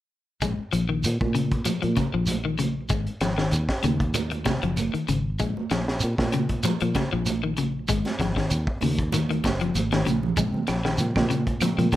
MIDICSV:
0, 0, Header, 1, 8, 480
1, 0, Start_track
1, 0, Key_signature, -5, "minor"
1, 0, Tempo, 621762
1, 330, Time_signature, 4, 2, 24, 8
1, 9234, End_track
2, 0, Start_track
2, 0, Title_t, "Reed electric piano"
2, 0, Program_c, 0, 4
2, 8008, Note_on_c, 0, 49, 66
2, 8017, Note_on_c, 0, 53, 62
2, 8018, Note_on_c, 0, 56, 61
2, 8022, Note_on_c, 0, 60, 74
2, 8206, Note_off_c, 0, 49, 0
2, 8210, Note_off_c, 0, 53, 0
2, 8211, Note_off_c, 0, 56, 0
2, 8213, Note_off_c, 0, 60, 0
2, 8490, Note_on_c, 0, 49, 80
2, 8496, Note_on_c, 0, 56, 62
2, 8497, Note_on_c, 0, 53, 64
2, 8503, Note_on_c, 0, 60, 75
2, 8686, Note_off_c, 0, 49, 0
2, 8689, Note_off_c, 0, 56, 0
2, 8690, Note_off_c, 0, 53, 0
2, 8693, Note_off_c, 0, 60, 0
2, 8966, Note_on_c, 0, 49, 77
2, 8966, Note_on_c, 0, 53, 66
2, 8975, Note_on_c, 0, 56, 71
2, 8975, Note_on_c, 0, 60, 89
2, 9164, Note_off_c, 0, 49, 0
2, 9164, Note_off_c, 0, 53, 0
2, 9168, Note_off_c, 0, 56, 0
2, 9168, Note_off_c, 0, 60, 0
2, 9234, End_track
3, 0, Start_track
3, 0, Title_t, "Clean electric guitar"
3, 0, Program_c, 1, 27
3, 324, Note_on_c, 1, 56, 60
3, 481, Note_off_c, 1, 56, 0
3, 561, Note_on_c, 1, 53, 61
3, 647, Note_off_c, 1, 53, 0
3, 688, Note_on_c, 1, 51, 56
3, 846, Note_off_c, 1, 51, 0
3, 1040, Note_on_c, 1, 49, 64
3, 1198, Note_off_c, 1, 49, 0
3, 1281, Note_on_c, 1, 53, 66
3, 1368, Note_off_c, 1, 53, 0
3, 1406, Note_on_c, 1, 53, 56
3, 1482, Note_off_c, 1, 53, 0
3, 1519, Note_on_c, 1, 49, 65
3, 1606, Note_off_c, 1, 49, 0
3, 1652, Note_on_c, 1, 53, 59
3, 1810, Note_off_c, 1, 53, 0
3, 1891, Note_on_c, 1, 51, 57
3, 1966, Note_off_c, 1, 51, 0
3, 1998, Note_on_c, 1, 49, 57
3, 2157, Note_off_c, 1, 49, 0
3, 2239, Note_on_c, 1, 56, 67
3, 2398, Note_off_c, 1, 56, 0
3, 2485, Note_on_c, 1, 53, 67
3, 2570, Note_off_c, 1, 53, 0
3, 2609, Note_on_c, 1, 51, 58
3, 2767, Note_off_c, 1, 51, 0
3, 2965, Note_on_c, 1, 49, 62
3, 3122, Note_off_c, 1, 49, 0
3, 3442, Note_on_c, 1, 48, 63
3, 3528, Note_off_c, 1, 48, 0
3, 3575, Note_on_c, 1, 53, 66
3, 3732, Note_off_c, 1, 53, 0
3, 3812, Note_on_c, 1, 51, 55
3, 3886, Note_off_c, 1, 51, 0
3, 3926, Note_on_c, 1, 49, 62
3, 4083, Note_off_c, 1, 49, 0
3, 4169, Note_on_c, 1, 56, 62
3, 4325, Note_off_c, 1, 56, 0
3, 4410, Note_on_c, 1, 53, 64
3, 4494, Note_off_c, 1, 53, 0
3, 4892, Note_on_c, 1, 49, 60
3, 5047, Note_off_c, 1, 49, 0
3, 5132, Note_on_c, 1, 53, 74
3, 5215, Note_off_c, 1, 53, 0
3, 5264, Note_on_c, 1, 53, 62
3, 5335, Note_off_c, 1, 53, 0
3, 5375, Note_on_c, 1, 49, 68
3, 5457, Note_off_c, 1, 49, 0
3, 5502, Note_on_c, 1, 53, 64
3, 5656, Note_off_c, 1, 53, 0
3, 5740, Note_on_c, 1, 51, 56
3, 5812, Note_off_c, 1, 51, 0
3, 5853, Note_on_c, 1, 49, 58
3, 6007, Note_off_c, 1, 49, 0
3, 6094, Note_on_c, 1, 56, 65
3, 6248, Note_off_c, 1, 56, 0
3, 6332, Note_on_c, 1, 53, 68
3, 6415, Note_off_c, 1, 53, 0
3, 6458, Note_on_c, 1, 51, 61
3, 6613, Note_off_c, 1, 51, 0
3, 6814, Note_on_c, 1, 49, 58
3, 6968, Note_off_c, 1, 49, 0
3, 7055, Note_on_c, 1, 51, 73
3, 7137, Note_off_c, 1, 51, 0
3, 7184, Note_on_c, 1, 51, 64
3, 7254, Note_off_c, 1, 51, 0
3, 7421, Note_on_c, 1, 53, 58
3, 7575, Note_off_c, 1, 53, 0
3, 7663, Note_on_c, 1, 51, 57
3, 7733, Note_off_c, 1, 51, 0
3, 7771, Note_on_c, 1, 49, 66
3, 7925, Note_off_c, 1, 49, 0
3, 8010, Note_on_c, 1, 56, 65
3, 8165, Note_off_c, 1, 56, 0
3, 8245, Note_on_c, 1, 53, 61
3, 8329, Note_off_c, 1, 53, 0
3, 8375, Note_on_c, 1, 51, 59
3, 8531, Note_off_c, 1, 51, 0
3, 8726, Note_on_c, 1, 49, 62
3, 8881, Note_off_c, 1, 49, 0
3, 8970, Note_on_c, 1, 53, 73
3, 9053, Note_off_c, 1, 53, 0
3, 9099, Note_on_c, 1, 53, 61
3, 9170, Note_off_c, 1, 53, 0
3, 9234, End_track
4, 0, Start_track
4, 0, Title_t, "Fingered electric bass"
4, 0, Program_c, 2, 33
4, 324, Note_on_c, 2, 34, 83
4, 445, Note_off_c, 2, 34, 0
4, 566, Note_on_c, 2, 34, 65
4, 789, Note_off_c, 2, 34, 0
4, 815, Note_on_c, 2, 46, 78
4, 931, Note_off_c, 2, 46, 0
4, 937, Note_on_c, 2, 46, 69
4, 1388, Note_off_c, 2, 46, 0
4, 1419, Note_on_c, 2, 46, 67
4, 1522, Note_off_c, 2, 46, 0
4, 1656, Note_on_c, 2, 34, 61
4, 2219, Note_off_c, 2, 34, 0
4, 2244, Note_on_c, 2, 32, 83
4, 2366, Note_off_c, 2, 32, 0
4, 2479, Note_on_c, 2, 32, 69
4, 2705, Note_off_c, 2, 32, 0
4, 2718, Note_on_c, 2, 39, 78
4, 2843, Note_off_c, 2, 39, 0
4, 2966, Note_on_c, 2, 39, 78
4, 3547, Note_off_c, 2, 39, 0
4, 3577, Note_on_c, 2, 30, 67
4, 3799, Note_off_c, 2, 30, 0
4, 3929, Note_on_c, 2, 32, 72
4, 4151, Note_off_c, 2, 32, 0
4, 4169, Note_on_c, 2, 34, 74
4, 4289, Note_off_c, 2, 34, 0
4, 4410, Note_on_c, 2, 34, 69
4, 4631, Note_off_c, 2, 34, 0
4, 4661, Note_on_c, 2, 46, 81
4, 4770, Note_off_c, 2, 46, 0
4, 4775, Note_on_c, 2, 46, 72
4, 5227, Note_off_c, 2, 46, 0
4, 5266, Note_on_c, 2, 46, 69
4, 5365, Note_off_c, 2, 46, 0
4, 5508, Note_on_c, 2, 34, 70
4, 6064, Note_off_c, 2, 34, 0
4, 6090, Note_on_c, 2, 32, 73
4, 6209, Note_off_c, 2, 32, 0
4, 6327, Note_on_c, 2, 32, 70
4, 6549, Note_off_c, 2, 32, 0
4, 6572, Note_on_c, 2, 39, 88
4, 6690, Note_off_c, 2, 39, 0
4, 6812, Note_on_c, 2, 39, 85
4, 7260, Note_off_c, 2, 39, 0
4, 7289, Note_on_c, 2, 30, 59
4, 7505, Note_off_c, 2, 30, 0
4, 7530, Note_on_c, 2, 32, 72
4, 7746, Note_off_c, 2, 32, 0
4, 7766, Note_on_c, 2, 34, 68
4, 7984, Note_off_c, 2, 34, 0
4, 8006, Note_on_c, 2, 34, 76
4, 8126, Note_off_c, 2, 34, 0
4, 8254, Note_on_c, 2, 34, 71
4, 8472, Note_off_c, 2, 34, 0
4, 8490, Note_on_c, 2, 46, 81
4, 8607, Note_off_c, 2, 46, 0
4, 8619, Note_on_c, 2, 46, 83
4, 9067, Note_off_c, 2, 46, 0
4, 9097, Note_on_c, 2, 46, 71
4, 9198, Note_off_c, 2, 46, 0
4, 9234, End_track
5, 0, Start_track
5, 0, Title_t, "Muted clean electric guitar strokes"
5, 3208, Note_on_c, 9, 29, 80
5, 3285, Note_off_c, 9, 29, 0
5, 3333, Note_on_c, 9, 29, 57
5, 3410, Note_off_c, 9, 29, 0
5, 7296, Note_on_c, 9, 29, 68
5, 7373, Note_off_c, 9, 29, 0
5, 9234, End_track
6, 0, Start_track
6, 0, Title_t, "Muted fingered electric bass strokes"
6, 454, Note_on_c, 9, 29, 28
6, 531, Note_off_c, 9, 29, 0
6, 3815, Note_on_c, 9, 29, 30
6, 3892, Note_off_c, 9, 29, 0
6, 4304, Note_on_c, 9, 29, 28
6, 4381, Note_off_c, 9, 29, 0
6, 9234, End_track
7, 0, Start_track
7, 0, Title_t, "Shekere"
7, 322, Note_on_c, 9, 82, 65
7, 399, Note_off_c, 9, 82, 0
7, 556, Note_on_c, 9, 82, 24
7, 633, Note_off_c, 9, 82, 0
7, 800, Note_on_c, 9, 82, 70
7, 877, Note_off_c, 9, 82, 0
7, 1039, Note_on_c, 9, 82, 25
7, 1117, Note_off_c, 9, 82, 0
7, 1278, Note_on_c, 9, 82, 72
7, 1355, Note_off_c, 9, 82, 0
7, 1518, Note_on_c, 9, 82, 25
7, 1595, Note_off_c, 9, 82, 0
7, 1747, Note_on_c, 9, 82, 65
7, 1824, Note_off_c, 9, 82, 0
7, 1994, Note_on_c, 9, 82, 25
7, 2071, Note_off_c, 9, 82, 0
7, 2233, Note_on_c, 9, 82, 71
7, 2310, Note_off_c, 9, 82, 0
7, 2483, Note_on_c, 9, 82, 24
7, 2560, Note_off_c, 9, 82, 0
7, 2724, Note_on_c, 9, 82, 68
7, 2801, Note_off_c, 9, 82, 0
7, 2962, Note_on_c, 9, 82, 24
7, 3039, Note_off_c, 9, 82, 0
7, 3197, Note_on_c, 9, 82, 78
7, 3275, Note_off_c, 9, 82, 0
7, 3439, Note_on_c, 9, 82, 22
7, 3516, Note_off_c, 9, 82, 0
7, 3684, Note_on_c, 9, 82, 61
7, 3761, Note_off_c, 9, 82, 0
7, 3923, Note_on_c, 9, 82, 25
7, 4000, Note_off_c, 9, 82, 0
7, 4163, Note_on_c, 9, 82, 71
7, 4241, Note_off_c, 9, 82, 0
7, 4404, Note_on_c, 9, 82, 24
7, 4481, Note_off_c, 9, 82, 0
7, 4632, Note_on_c, 9, 82, 72
7, 4709, Note_off_c, 9, 82, 0
7, 4881, Note_on_c, 9, 82, 23
7, 4958, Note_off_c, 9, 82, 0
7, 5119, Note_on_c, 9, 82, 84
7, 5197, Note_off_c, 9, 82, 0
7, 5359, Note_on_c, 9, 82, 21
7, 5436, Note_off_c, 9, 82, 0
7, 5605, Note_on_c, 9, 82, 72
7, 5682, Note_off_c, 9, 82, 0
7, 5845, Note_on_c, 9, 82, 27
7, 5922, Note_off_c, 9, 82, 0
7, 6085, Note_on_c, 9, 82, 69
7, 6162, Note_off_c, 9, 82, 0
7, 6338, Note_on_c, 9, 82, 22
7, 6415, Note_off_c, 9, 82, 0
7, 6566, Note_on_c, 9, 82, 70
7, 6644, Note_off_c, 9, 82, 0
7, 6810, Note_on_c, 9, 82, 22
7, 6887, Note_off_c, 9, 82, 0
7, 7051, Note_on_c, 9, 82, 77
7, 7128, Note_off_c, 9, 82, 0
7, 7293, Note_on_c, 9, 82, 23
7, 7370, Note_off_c, 9, 82, 0
7, 7530, Note_on_c, 9, 82, 63
7, 7607, Note_off_c, 9, 82, 0
7, 7778, Note_on_c, 9, 82, 28
7, 7855, Note_off_c, 9, 82, 0
7, 8007, Note_on_c, 9, 82, 80
7, 8084, Note_off_c, 9, 82, 0
7, 8244, Note_on_c, 9, 82, 22
7, 8321, Note_off_c, 9, 82, 0
7, 8475, Note_on_c, 9, 82, 73
7, 8552, Note_off_c, 9, 82, 0
7, 8726, Note_on_c, 9, 82, 26
7, 8803, Note_off_c, 9, 82, 0
7, 8963, Note_on_c, 9, 82, 80
7, 9040, Note_off_c, 9, 82, 0
7, 9197, Note_on_c, 9, 82, 24
7, 9234, Note_off_c, 9, 82, 0
7, 9234, End_track
8, 0, Start_track
8, 0, Title_t, "Drums"
8, 324, Note_on_c, 9, 36, 74
8, 324, Note_on_c, 9, 42, 57
8, 401, Note_off_c, 9, 36, 0
8, 401, Note_off_c, 9, 42, 0
8, 564, Note_on_c, 9, 42, 45
8, 641, Note_off_c, 9, 42, 0
8, 807, Note_on_c, 9, 42, 53
8, 884, Note_off_c, 9, 42, 0
8, 933, Note_on_c, 9, 36, 61
8, 936, Note_on_c, 9, 63, 58
8, 1011, Note_off_c, 9, 36, 0
8, 1013, Note_off_c, 9, 63, 0
8, 1040, Note_on_c, 9, 63, 56
8, 1044, Note_on_c, 9, 42, 46
8, 1118, Note_off_c, 9, 63, 0
8, 1122, Note_off_c, 9, 42, 0
8, 1169, Note_on_c, 9, 42, 29
8, 1170, Note_on_c, 9, 36, 55
8, 1246, Note_off_c, 9, 42, 0
8, 1248, Note_off_c, 9, 36, 0
8, 1275, Note_on_c, 9, 42, 63
8, 1277, Note_on_c, 9, 63, 76
8, 1352, Note_off_c, 9, 42, 0
8, 1354, Note_off_c, 9, 63, 0
8, 1405, Note_on_c, 9, 63, 55
8, 1408, Note_on_c, 9, 42, 26
8, 1483, Note_off_c, 9, 63, 0
8, 1485, Note_off_c, 9, 42, 0
8, 1517, Note_on_c, 9, 63, 73
8, 1521, Note_on_c, 9, 36, 52
8, 1521, Note_on_c, 9, 42, 41
8, 1594, Note_off_c, 9, 63, 0
8, 1598, Note_off_c, 9, 36, 0
8, 1598, Note_off_c, 9, 42, 0
8, 1759, Note_on_c, 9, 42, 62
8, 1762, Note_on_c, 9, 63, 69
8, 1836, Note_off_c, 9, 42, 0
8, 1839, Note_off_c, 9, 63, 0
8, 2003, Note_on_c, 9, 63, 59
8, 2004, Note_on_c, 9, 42, 47
8, 2081, Note_off_c, 9, 42, 0
8, 2081, Note_off_c, 9, 63, 0
8, 2235, Note_on_c, 9, 42, 53
8, 2240, Note_on_c, 9, 36, 81
8, 2312, Note_off_c, 9, 42, 0
8, 2317, Note_off_c, 9, 36, 0
8, 2367, Note_on_c, 9, 42, 27
8, 2444, Note_off_c, 9, 42, 0
8, 2475, Note_on_c, 9, 42, 43
8, 2481, Note_on_c, 9, 38, 62
8, 2552, Note_off_c, 9, 42, 0
8, 2559, Note_off_c, 9, 38, 0
8, 2610, Note_on_c, 9, 38, 54
8, 2687, Note_off_c, 9, 38, 0
8, 2712, Note_on_c, 9, 42, 50
8, 2789, Note_off_c, 9, 42, 0
8, 2846, Note_on_c, 9, 36, 65
8, 2848, Note_on_c, 9, 38, 53
8, 2923, Note_off_c, 9, 36, 0
8, 2925, Note_off_c, 9, 38, 0
8, 2956, Note_on_c, 9, 63, 66
8, 2958, Note_on_c, 9, 42, 45
8, 3033, Note_off_c, 9, 63, 0
8, 3035, Note_off_c, 9, 42, 0
8, 3089, Note_on_c, 9, 36, 60
8, 3089, Note_on_c, 9, 42, 26
8, 3166, Note_off_c, 9, 36, 0
8, 3167, Note_off_c, 9, 42, 0
8, 3195, Note_on_c, 9, 42, 59
8, 3201, Note_on_c, 9, 63, 80
8, 3272, Note_off_c, 9, 42, 0
8, 3279, Note_off_c, 9, 63, 0
8, 3326, Note_on_c, 9, 42, 27
8, 3331, Note_on_c, 9, 63, 56
8, 3403, Note_off_c, 9, 42, 0
8, 3408, Note_off_c, 9, 63, 0
8, 3438, Note_on_c, 9, 42, 37
8, 3438, Note_on_c, 9, 63, 79
8, 3443, Note_on_c, 9, 36, 46
8, 3444, Note_on_c, 9, 38, 57
8, 3515, Note_off_c, 9, 42, 0
8, 3516, Note_off_c, 9, 63, 0
8, 3520, Note_off_c, 9, 36, 0
8, 3521, Note_off_c, 9, 38, 0
8, 3570, Note_on_c, 9, 42, 25
8, 3648, Note_off_c, 9, 42, 0
8, 3678, Note_on_c, 9, 63, 67
8, 3682, Note_on_c, 9, 42, 51
8, 3755, Note_off_c, 9, 63, 0
8, 3759, Note_off_c, 9, 42, 0
8, 3817, Note_on_c, 9, 42, 25
8, 3894, Note_off_c, 9, 42, 0
8, 3924, Note_on_c, 9, 42, 42
8, 4002, Note_off_c, 9, 42, 0
8, 4167, Note_on_c, 9, 36, 80
8, 4167, Note_on_c, 9, 42, 53
8, 4244, Note_off_c, 9, 36, 0
8, 4245, Note_off_c, 9, 42, 0
8, 4300, Note_on_c, 9, 63, 58
8, 4378, Note_off_c, 9, 63, 0
8, 4406, Note_on_c, 9, 42, 44
8, 4412, Note_on_c, 9, 38, 61
8, 4483, Note_off_c, 9, 42, 0
8, 4489, Note_off_c, 9, 38, 0
8, 4542, Note_on_c, 9, 38, 54
8, 4619, Note_off_c, 9, 38, 0
8, 4643, Note_on_c, 9, 42, 52
8, 4720, Note_off_c, 9, 42, 0
8, 4774, Note_on_c, 9, 36, 60
8, 4778, Note_on_c, 9, 38, 57
8, 4779, Note_on_c, 9, 63, 60
8, 4851, Note_off_c, 9, 36, 0
8, 4855, Note_off_c, 9, 38, 0
8, 4856, Note_off_c, 9, 63, 0
8, 4882, Note_on_c, 9, 42, 43
8, 4893, Note_on_c, 9, 63, 60
8, 4959, Note_off_c, 9, 42, 0
8, 4970, Note_off_c, 9, 63, 0
8, 5011, Note_on_c, 9, 42, 31
8, 5014, Note_on_c, 9, 36, 51
8, 5088, Note_off_c, 9, 42, 0
8, 5092, Note_off_c, 9, 36, 0
8, 5117, Note_on_c, 9, 42, 59
8, 5135, Note_on_c, 9, 63, 88
8, 5194, Note_off_c, 9, 42, 0
8, 5212, Note_off_c, 9, 63, 0
8, 5252, Note_on_c, 9, 42, 28
8, 5329, Note_off_c, 9, 42, 0
8, 5363, Note_on_c, 9, 42, 38
8, 5366, Note_on_c, 9, 36, 52
8, 5369, Note_on_c, 9, 38, 49
8, 5372, Note_on_c, 9, 63, 82
8, 5441, Note_off_c, 9, 42, 0
8, 5443, Note_off_c, 9, 36, 0
8, 5447, Note_off_c, 9, 38, 0
8, 5449, Note_off_c, 9, 63, 0
8, 5606, Note_on_c, 9, 42, 61
8, 5609, Note_on_c, 9, 63, 76
8, 5683, Note_off_c, 9, 42, 0
8, 5686, Note_off_c, 9, 63, 0
8, 5843, Note_on_c, 9, 42, 41
8, 5853, Note_on_c, 9, 63, 54
8, 5920, Note_off_c, 9, 42, 0
8, 5930, Note_off_c, 9, 63, 0
8, 6088, Note_on_c, 9, 36, 75
8, 6091, Note_on_c, 9, 42, 66
8, 6166, Note_off_c, 9, 36, 0
8, 6169, Note_off_c, 9, 42, 0
8, 6214, Note_on_c, 9, 63, 61
8, 6217, Note_on_c, 9, 42, 27
8, 6223, Note_on_c, 9, 38, 27
8, 6292, Note_off_c, 9, 63, 0
8, 6294, Note_off_c, 9, 42, 0
8, 6300, Note_off_c, 9, 38, 0
8, 6328, Note_on_c, 9, 36, 57
8, 6331, Note_on_c, 9, 42, 45
8, 6337, Note_on_c, 9, 38, 71
8, 6405, Note_off_c, 9, 36, 0
8, 6408, Note_off_c, 9, 42, 0
8, 6415, Note_off_c, 9, 38, 0
8, 6455, Note_on_c, 9, 36, 50
8, 6461, Note_on_c, 9, 38, 57
8, 6533, Note_off_c, 9, 36, 0
8, 6538, Note_off_c, 9, 38, 0
8, 6565, Note_on_c, 9, 42, 54
8, 6642, Note_off_c, 9, 42, 0
8, 6694, Note_on_c, 9, 36, 62
8, 6772, Note_off_c, 9, 36, 0
8, 6800, Note_on_c, 9, 63, 65
8, 6806, Note_on_c, 9, 46, 54
8, 6877, Note_off_c, 9, 63, 0
8, 6883, Note_off_c, 9, 46, 0
8, 6937, Note_on_c, 9, 36, 58
8, 6939, Note_on_c, 9, 42, 25
8, 7014, Note_off_c, 9, 36, 0
8, 7016, Note_off_c, 9, 42, 0
8, 7044, Note_on_c, 9, 63, 89
8, 7050, Note_on_c, 9, 42, 63
8, 7121, Note_off_c, 9, 63, 0
8, 7128, Note_off_c, 9, 42, 0
8, 7172, Note_on_c, 9, 63, 63
8, 7184, Note_on_c, 9, 42, 26
8, 7249, Note_off_c, 9, 63, 0
8, 7261, Note_off_c, 9, 42, 0
8, 7287, Note_on_c, 9, 63, 81
8, 7289, Note_on_c, 9, 36, 47
8, 7296, Note_on_c, 9, 42, 39
8, 7302, Note_on_c, 9, 38, 54
8, 7364, Note_off_c, 9, 63, 0
8, 7366, Note_off_c, 9, 36, 0
8, 7373, Note_off_c, 9, 42, 0
8, 7379, Note_off_c, 9, 38, 0
8, 7415, Note_on_c, 9, 42, 27
8, 7492, Note_off_c, 9, 42, 0
8, 7521, Note_on_c, 9, 63, 62
8, 7530, Note_on_c, 9, 42, 56
8, 7599, Note_off_c, 9, 63, 0
8, 7607, Note_off_c, 9, 42, 0
8, 7653, Note_on_c, 9, 63, 59
8, 7657, Note_on_c, 9, 42, 26
8, 7663, Note_on_c, 9, 38, 55
8, 7730, Note_off_c, 9, 63, 0
8, 7734, Note_off_c, 9, 42, 0
8, 7740, Note_off_c, 9, 38, 0
8, 7765, Note_on_c, 9, 63, 81
8, 7771, Note_on_c, 9, 42, 40
8, 7843, Note_off_c, 9, 63, 0
8, 7849, Note_off_c, 9, 42, 0
8, 7900, Note_on_c, 9, 64, 79
8, 7977, Note_off_c, 9, 64, 0
8, 8004, Note_on_c, 9, 42, 57
8, 8006, Note_on_c, 9, 36, 85
8, 8081, Note_off_c, 9, 42, 0
8, 8083, Note_off_c, 9, 36, 0
8, 8138, Note_on_c, 9, 63, 64
8, 8216, Note_off_c, 9, 63, 0
8, 8239, Note_on_c, 9, 42, 43
8, 8245, Note_on_c, 9, 38, 68
8, 8249, Note_on_c, 9, 75, 67
8, 8316, Note_off_c, 9, 42, 0
8, 8322, Note_off_c, 9, 38, 0
8, 8326, Note_off_c, 9, 75, 0
8, 8376, Note_on_c, 9, 38, 66
8, 8453, Note_off_c, 9, 38, 0
8, 8485, Note_on_c, 9, 42, 52
8, 8562, Note_off_c, 9, 42, 0
8, 8614, Note_on_c, 9, 36, 65
8, 8614, Note_on_c, 9, 75, 54
8, 8619, Note_on_c, 9, 63, 59
8, 8622, Note_on_c, 9, 38, 58
8, 8691, Note_off_c, 9, 75, 0
8, 8692, Note_off_c, 9, 36, 0
8, 8696, Note_off_c, 9, 63, 0
8, 8699, Note_off_c, 9, 38, 0
8, 8728, Note_on_c, 9, 42, 43
8, 8734, Note_on_c, 9, 63, 66
8, 8805, Note_off_c, 9, 42, 0
8, 8811, Note_off_c, 9, 63, 0
8, 8853, Note_on_c, 9, 42, 31
8, 8854, Note_on_c, 9, 36, 56
8, 8930, Note_off_c, 9, 42, 0
8, 8931, Note_off_c, 9, 36, 0
8, 8960, Note_on_c, 9, 75, 63
8, 8969, Note_on_c, 9, 42, 56
8, 8975, Note_on_c, 9, 63, 89
8, 9037, Note_off_c, 9, 75, 0
8, 9046, Note_off_c, 9, 42, 0
8, 9052, Note_off_c, 9, 63, 0
8, 9099, Note_on_c, 9, 42, 30
8, 9106, Note_on_c, 9, 63, 65
8, 9176, Note_off_c, 9, 42, 0
8, 9183, Note_off_c, 9, 63, 0
8, 9206, Note_on_c, 9, 36, 54
8, 9207, Note_on_c, 9, 63, 73
8, 9234, Note_off_c, 9, 36, 0
8, 9234, Note_off_c, 9, 63, 0
8, 9234, End_track
0, 0, End_of_file